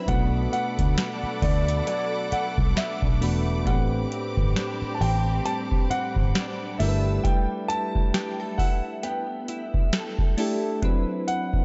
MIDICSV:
0, 0, Header, 1, 8, 480
1, 0, Start_track
1, 0, Tempo, 895522
1, 44, Time_signature, 4, 2, 24, 8
1, 6243, End_track
2, 0, Start_track
2, 0, Title_t, "Grand piano"
2, 0, Program_c, 0, 0
2, 44, Note_on_c, 0, 78, 95
2, 274, Note_off_c, 0, 78, 0
2, 282, Note_on_c, 0, 78, 100
2, 762, Note_on_c, 0, 74, 87
2, 778, Note_off_c, 0, 78, 0
2, 986, Note_off_c, 0, 74, 0
2, 1004, Note_on_c, 0, 74, 88
2, 1246, Note_on_c, 0, 78, 90
2, 1252, Note_off_c, 0, 74, 0
2, 1485, Note_on_c, 0, 76, 88
2, 1492, Note_off_c, 0, 78, 0
2, 1943, Note_off_c, 0, 76, 0
2, 1966, Note_on_c, 0, 78, 89
2, 2423, Note_off_c, 0, 78, 0
2, 2652, Note_on_c, 0, 81, 80
2, 2684, Note_off_c, 0, 81, 0
2, 2685, Note_on_c, 0, 79, 99
2, 2924, Note_on_c, 0, 81, 108
2, 2932, Note_off_c, 0, 79, 0
2, 2978, Note_off_c, 0, 81, 0
2, 3165, Note_on_c, 0, 78, 113
2, 3640, Note_on_c, 0, 76, 93
2, 3659, Note_off_c, 0, 78, 0
2, 3879, Note_on_c, 0, 79, 95
2, 3889, Note_off_c, 0, 76, 0
2, 4119, Note_on_c, 0, 81, 124
2, 4129, Note_off_c, 0, 79, 0
2, 4580, Note_off_c, 0, 81, 0
2, 4597, Note_on_c, 0, 78, 88
2, 4824, Note_off_c, 0, 78, 0
2, 4841, Note_on_c, 0, 79, 84
2, 5541, Note_off_c, 0, 79, 0
2, 6044, Note_on_c, 0, 78, 99
2, 6243, Note_off_c, 0, 78, 0
2, 6243, End_track
3, 0, Start_track
3, 0, Title_t, "String section"
3, 0, Program_c, 1, 48
3, 0, Note_on_c, 1, 83, 77
3, 42, Note_on_c, 1, 69, 87
3, 42, Note_on_c, 1, 86, 91
3, 43, Note_on_c, 1, 78, 81
3, 1944, Note_off_c, 1, 69, 0
3, 1944, Note_off_c, 1, 78, 0
3, 1964, Note_on_c, 1, 60, 80
3, 1965, Note_on_c, 1, 67, 85
3, 3622, Note_off_c, 1, 86, 0
3, 3624, Note_off_c, 1, 83, 0
3, 3627, Note_off_c, 1, 60, 0
3, 3641, Note_on_c, 1, 88, 82
3, 3642, Note_on_c, 1, 71, 68
3, 3642, Note_on_c, 1, 81, 66
3, 3866, Note_off_c, 1, 67, 0
3, 3880, Note_off_c, 1, 88, 0
3, 3881, Note_off_c, 1, 71, 0
3, 3881, Note_off_c, 1, 81, 0
3, 6243, End_track
4, 0, Start_track
4, 0, Title_t, "Synth keys"
4, 0, Program_c, 2, 88
4, 0, Control_c, 2, 64, 127
4, 0, Note_on_c, 2, 54, 74
4, 0, Note_on_c, 2, 60, 70
4, 0, Note_on_c, 2, 64, 70
4, 43, Note_on_c, 2, 57, 78
4, 47, Note_on_c, 2, 59, 71
4, 49, Note_on_c, 2, 62, 73
4, 52, Control_c, 2, 64, 0
4, 53, Note_on_c, 2, 66, 72
4, 55, Note_off_c, 2, 54, 0
4, 55, Note_off_c, 2, 64, 0
4, 57, Note_off_c, 2, 60, 0
4, 57, Note_on_c, 2, 71, 85
4, 145, Control_c, 2, 64, 127
4, 760, Note_off_c, 2, 57, 0
4, 761, Note_off_c, 2, 59, 0
4, 763, Note_off_c, 2, 62, 0
4, 765, Note_off_c, 2, 66, 0
4, 767, Note_off_c, 2, 71, 0
4, 1720, Note_on_c, 2, 57, 76
4, 1724, Note_on_c, 2, 59, 70
4, 1726, Note_on_c, 2, 62, 70
4, 1730, Note_on_c, 2, 66, 71
4, 1734, Note_on_c, 2, 71, 84
4, 1911, Note_off_c, 2, 57, 0
4, 1913, Note_off_c, 2, 59, 0
4, 1914, Note_off_c, 2, 62, 0
4, 1916, Note_off_c, 2, 66, 0
4, 1918, Note_off_c, 2, 71, 0
4, 1960, Note_on_c, 2, 57, 76
4, 1963, Note_on_c, 2, 59, 56
4, 1967, Note_on_c, 2, 62, 73
4, 1970, Note_on_c, 2, 67, 74
4, 1972, Control_c, 2, 64, 0
4, 1974, Note_on_c, 2, 71, 85
4, 1998, Note_on_c, 2, 60, 70
4, 2004, Note_off_c, 2, 59, 0
4, 2058, Control_c, 2, 64, 127
4, 2678, Note_off_c, 2, 57, 0
4, 2681, Note_off_c, 2, 62, 0
4, 2683, Note_off_c, 2, 67, 0
4, 2685, Note_off_c, 2, 71, 0
4, 2697, Note_off_c, 2, 60, 0
4, 3641, Note_on_c, 2, 57, 81
4, 3644, Note_on_c, 2, 62, 73
4, 3648, Note_on_c, 2, 64, 73
4, 3651, Note_on_c, 2, 67, 74
4, 3652, Control_c, 2, 64, 0
4, 3655, Note_on_c, 2, 70, 72
4, 3690, Note_off_c, 2, 70, 0
4, 3690, Note_on_c, 2, 71, 93
4, 3756, Control_c, 2, 64, 127
4, 4419, Note_off_c, 2, 57, 0
4, 4420, Note_off_c, 2, 62, 0
4, 4422, Note_off_c, 2, 64, 0
4, 4423, Note_off_c, 2, 67, 0
4, 4443, Note_off_c, 2, 71, 0
4, 5560, Note_on_c, 2, 57, 92
4, 5564, Note_on_c, 2, 62, 84
4, 5568, Note_on_c, 2, 64, 84
4, 5571, Note_on_c, 2, 67, 87
4, 5575, Note_on_c, 2, 69, 98
4, 5751, Note_off_c, 2, 57, 0
4, 5753, Note_off_c, 2, 62, 0
4, 5755, Note_off_c, 2, 64, 0
4, 5756, Note_off_c, 2, 67, 0
4, 5758, Note_off_c, 2, 69, 0
4, 5800, Note_on_c, 2, 54, 96
4, 5804, Note_on_c, 2, 60, 85
4, 5806, Note_on_c, 2, 62, 82
4, 5811, Note_on_c, 2, 64, 88
4, 5812, Control_c, 2, 64, 0
4, 5815, Note_on_c, 2, 71, 104
4, 5901, Control_c, 2, 64, 127
4, 6243, Note_off_c, 2, 54, 0
4, 6243, Note_off_c, 2, 60, 0
4, 6243, Note_off_c, 2, 62, 0
4, 6243, Note_off_c, 2, 64, 0
4, 6243, Note_off_c, 2, 71, 0
4, 6243, End_track
5, 0, Start_track
5, 0, Title_t, "Clean electric guitar"
5, 0, Program_c, 3, 27
5, 0, Note_on_c, 3, 60, 67
5, 0, Note_on_c, 3, 64, 66
5, 0, Note_on_c, 3, 71, 70
5, 42, Note_on_c, 3, 47, 90
5, 99, Note_off_c, 3, 60, 0
5, 99, Note_off_c, 3, 64, 0
5, 282, Note_on_c, 3, 57, 59
5, 298, Note_off_c, 3, 71, 0
5, 522, Note_on_c, 3, 62, 71
5, 759, Note_off_c, 3, 57, 0
5, 761, Note_on_c, 3, 57, 62
5, 1000, Note_on_c, 3, 54, 68
5, 1239, Note_off_c, 3, 57, 0
5, 1241, Note_on_c, 3, 57, 66
5, 1479, Note_off_c, 3, 62, 0
5, 1481, Note_on_c, 3, 62, 68
5, 1718, Note_off_c, 3, 57, 0
5, 1720, Note_on_c, 3, 57, 62
5, 1959, Note_on_c, 3, 45, 89
5, 1963, Note_off_c, 3, 47, 0
5, 2018, Note_off_c, 3, 54, 0
5, 2199, Note_off_c, 3, 57, 0
5, 2202, Note_on_c, 3, 60, 60
5, 2218, Note_off_c, 3, 62, 0
5, 2441, Note_on_c, 3, 62, 72
5, 2676, Note_off_c, 3, 60, 0
5, 2683, Note_on_c, 3, 60, 62
5, 2922, Note_on_c, 3, 55, 68
5, 3156, Note_off_c, 3, 60, 0
5, 3162, Note_on_c, 3, 60, 63
5, 3399, Note_off_c, 3, 62, 0
5, 3401, Note_on_c, 3, 62, 67
5, 3639, Note_off_c, 3, 55, 0
5, 3641, Note_on_c, 3, 55, 84
5, 3697, Note_off_c, 3, 45, 0
5, 3699, Note_off_c, 3, 60, 0
5, 3876, Note_off_c, 3, 55, 0
5, 3882, Note_on_c, 3, 55, 90
5, 4122, Note_off_c, 3, 62, 0
5, 4124, Note_on_c, 3, 64, 61
5, 4364, Note_on_c, 3, 67, 71
5, 4502, Note_off_c, 3, 67, 0
5, 4502, Note_on_c, 3, 69, 60
5, 4602, Note_off_c, 3, 64, 0
5, 4604, Note_on_c, 3, 64, 62
5, 4843, Note_on_c, 3, 59, 67
5, 5082, Note_off_c, 3, 64, 0
5, 5084, Note_on_c, 3, 64, 65
5, 5317, Note_off_c, 3, 69, 0
5, 5323, Note_on_c, 3, 69, 69
5, 5561, Note_off_c, 3, 64, 0
5, 5563, Note_on_c, 3, 64, 64
5, 5803, Note_off_c, 3, 55, 0
5, 6127, Note_off_c, 3, 64, 0
5, 6128, Note_off_c, 3, 59, 0
5, 6128, Note_off_c, 3, 69, 0
5, 6243, End_track
6, 0, Start_track
6, 0, Title_t, "Fingered electric bass"
6, 0, Program_c, 4, 33
6, 43, Note_on_c, 4, 35, 112
6, 247, Note_off_c, 4, 35, 0
6, 423, Note_on_c, 4, 38, 90
6, 509, Note_off_c, 4, 38, 0
6, 763, Note_on_c, 4, 38, 95
6, 967, Note_off_c, 4, 38, 0
6, 1382, Note_on_c, 4, 36, 85
6, 1468, Note_off_c, 4, 36, 0
6, 1621, Note_on_c, 4, 35, 90
6, 1708, Note_off_c, 4, 35, 0
6, 1722, Note_on_c, 4, 28, 84
6, 1965, Note_off_c, 4, 28, 0
6, 1965, Note_on_c, 4, 33, 103
6, 2168, Note_off_c, 4, 33, 0
6, 2344, Note_on_c, 4, 31, 95
6, 2429, Note_off_c, 4, 31, 0
6, 2684, Note_on_c, 4, 33, 96
6, 2888, Note_off_c, 4, 33, 0
6, 3303, Note_on_c, 4, 31, 95
6, 3389, Note_off_c, 4, 31, 0
6, 3644, Note_on_c, 4, 31, 105
6, 3848, Note_off_c, 4, 31, 0
6, 6243, End_track
7, 0, Start_track
7, 0, Title_t, "Muted fingered electric bass strokes"
7, 662, Note_on_c, 9, 29, 50
7, 715, Note_off_c, 9, 29, 0
7, 1245, Note_on_c, 9, 29, 51
7, 1298, Note_off_c, 9, 29, 0
7, 2583, Note_on_c, 9, 29, 49
7, 2636, Note_off_c, 9, 29, 0
7, 3164, Note_on_c, 9, 29, 50
7, 3218, Note_off_c, 9, 29, 0
7, 6243, End_track
8, 0, Start_track
8, 0, Title_t, "Drums"
8, 43, Note_on_c, 9, 42, 65
8, 44, Note_on_c, 9, 36, 114
8, 97, Note_off_c, 9, 36, 0
8, 97, Note_off_c, 9, 42, 0
8, 284, Note_on_c, 9, 42, 50
8, 338, Note_off_c, 9, 42, 0
8, 422, Note_on_c, 9, 42, 49
8, 423, Note_on_c, 9, 36, 90
8, 476, Note_off_c, 9, 42, 0
8, 477, Note_off_c, 9, 36, 0
8, 524, Note_on_c, 9, 38, 120
8, 524, Note_on_c, 9, 42, 71
8, 577, Note_off_c, 9, 38, 0
8, 577, Note_off_c, 9, 42, 0
8, 762, Note_on_c, 9, 36, 87
8, 764, Note_on_c, 9, 42, 54
8, 766, Note_on_c, 9, 46, 51
8, 816, Note_off_c, 9, 36, 0
8, 817, Note_off_c, 9, 42, 0
8, 820, Note_off_c, 9, 46, 0
8, 903, Note_on_c, 9, 42, 59
8, 956, Note_off_c, 9, 42, 0
8, 1003, Note_on_c, 9, 42, 66
8, 1056, Note_off_c, 9, 42, 0
8, 1244, Note_on_c, 9, 42, 62
8, 1298, Note_off_c, 9, 42, 0
8, 1382, Note_on_c, 9, 36, 100
8, 1436, Note_off_c, 9, 36, 0
8, 1483, Note_on_c, 9, 42, 68
8, 1484, Note_on_c, 9, 38, 112
8, 1537, Note_off_c, 9, 42, 0
8, 1538, Note_off_c, 9, 38, 0
8, 1621, Note_on_c, 9, 36, 102
8, 1674, Note_off_c, 9, 36, 0
8, 1726, Note_on_c, 9, 46, 68
8, 1780, Note_off_c, 9, 46, 0
8, 1964, Note_on_c, 9, 36, 116
8, 1966, Note_on_c, 9, 42, 65
8, 2018, Note_off_c, 9, 36, 0
8, 2019, Note_off_c, 9, 42, 0
8, 2208, Note_on_c, 9, 42, 60
8, 2261, Note_off_c, 9, 42, 0
8, 2344, Note_on_c, 9, 36, 92
8, 2398, Note_off_c, 9, 36, 0
8, 2446, Note_on_c, 9, 38, 117
8, 2446, Note_on_c, 9, 42, 67
8, 2499, Note_off_c, 9, 42, 0
8, 2500, Note_off_c, 9, 38, 0
8, 2689, Note_on_c, 9, 46, 48
8, 2742, Note_off_c, 9, 46, 0
8, 2924, Note_on_c, 9, 42, 69
8, 2978, Note_off_c, 9, 42, 0
8, 3064, Note_on_c, 9, 36, 91
8, 3118, Note_off_c, 9, 36, 0
8, 3167, Note_on_c, 9, 42, 59
8, 3221, Note_off_c, 9, 42, 0
8, 3303, Note_on_c, 9, 36, 98
8, 3356, Note_off_c, 9, 36, 0
8, 3405, Note_on_c, 9, 42, 65
8, 3406, Note_on_c, 9, 38, 112
8, 3458, Note_off_c, 9, 42, 0
8, 3459, Note_off_c, 9, 38, 0
8, 3645, Note_on_c, 9, 46, 70
8, 3699, Note_off_c, 9, 46, 0
8, 3884, Note_on_c, 9, 36, 123
8, 3885, Note_on_c, 9, 42, 67
8, 3937, Note_off_c, 9, 36, 0
8, 3939, Note_off_c, 9, 42, 0
8, 4127, Note_on_c, 9, 42, 63
8, 4180, Note_off_c, 9, 42, 0
8, 4264, Note_on_c, 9, 36, 90
8, 4317, Note_off_c, 9, 36, 0
8, 4364, Note_on_c, 9, 42, 67
8, 4365, Note_on_c, 9, 38, 118
8, 4418, Note_off_c, 9, 38, 0
8, 4418, Note_off_c, 9, 42, 0
8, 4602, Note_on_c, 9, 36, 88
8, 4606, Note_on_c, 9, 46, 47
8, 4655, Note_off_c, 9, 36, 0
8, 4660, Note_off_c, 9, 46, 0
8, 4842, Note_on_c, 9, 42, 70
8, 4895, Note_off_c, 9, 42, 0
8, 5083, Note_on_c, 9, 42, 64
8, 5137, Note_off_c, 9, 42, 0
8, 5221, Note_on_c, 9, 36, 93
8, 5275, Note_off_c, 9, 36, 0
8, 5321, Note_on_c, 9, 42, 69
8, 5322, Note_on_c, 9, 38, 106
8, 5375, Note_off_c, 9, 42, 0
8, 5376, Note_off_c, 9, 38, 0
8, 5460, Note_on_c, 9, 36, 106
8, 5513, Note_off_c, 9, 36, 0
8, 5562, Note_on_c, 9, 46, 72
8, 5616, Note_off_c, 9, 46, 0
8, 5803, Note_on_c, 9, 36, 118
8, 5803, Note_on_c, 9, 42, 61
8, 5856, Note_off_c, 9, 36, 0
8, 5856, Note_off_c, 9, 42, 0
8, 6046, Note_on_c, 9, 42, 63
8, 6099, Note_off_c, 9, 42, 0
8, 6183, Note_on_c, 9, 36, 91
8, 6236, Note_off_c, 9, 36, 0
8, 6243, End_track
0, 0, End_of_file